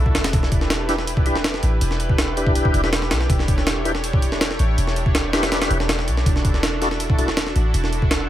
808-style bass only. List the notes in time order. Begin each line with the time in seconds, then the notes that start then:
Already playing: B1
0.15 E1
0.33 E1
1.63 A1
1.81 E1
2.74 E1
3.11 B1
3.30 E1
4.60 A1
4.78 E1
5.70 E1
6.08 B1
6.26 E1
7.56 A1
7.74 E1